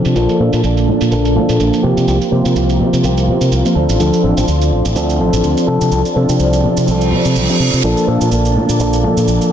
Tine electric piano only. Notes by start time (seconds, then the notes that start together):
Already playing: F3 C4 D4 A4
0.16 F3 A#3 D4 A4
0.40 F3 A#3 D4 A4
0.53 F3 A#3 D4 A#4
1.35 F3 A#3 D4 A4
1.83 F3 A#3 C4 G4
2.08 F3 A#3 C4 G4
2.31 F3 A#3 C4 G4
2.44 F3 A#3 C4 A#4
3.65 F3 A#3 C4 F4
4.00 F3 C4 D4 A4
4.24 F3 C4 D4 A4
4.37 F3 C4 D4 C5
5.20 F3 C4 D4 A4
5.67 F3 C4 D4 A4
5.91 F3 C4 D4 A4
6.15 F3 C4 D4 A4
6.28 F3 C4 D4 D5
7.49 F3 C4 D4 G4
7.84 F3 A#3 D4 A4
8.07 F3 A#3 D4 A4
8.21 F3 A#3 D4 A#4
9.03 F3 A#3 D4 A4